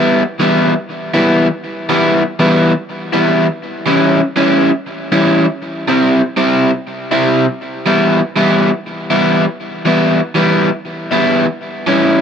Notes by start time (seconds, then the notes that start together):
Already playing: E3 G3 B3 E4
0.40 E3 G3 B3 E4
1.14 E3 G3 B3 E4
1.89 E3 G3 B3 E4
2.39 E3 G3 B3 E4
3.13 E3 G3 B3 E4
3.87 E3 G3 C#4 E4
4.36 E3 G3 C#4 E4
5.12 E3 G3 C#4 E4
5.88 C3 G3 C4 E4
6.37 C3 G3 C4 E4
7.11 C3 G3 C4 E4
7.86 E3 G3 B3 E4
8.36 E3 G3 B3 E4
9.10 E3 G3 B3 E4
9.85 E3 G3 B3 E4
10.35 E3 G3 B3 E4
11.11 E3 G3 B3 E4
11.87 E3 G3 C#4 E4